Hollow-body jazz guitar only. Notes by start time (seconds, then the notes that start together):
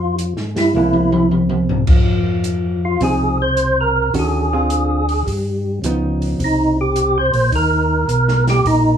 0.76 G#3 A#3 E4
3.02 F3 C4 D#4 G#4
4.14 D#3 C#4 F#4 A4
4.53 D3 C4 F4 G#4
5.85 F3 B3 D#4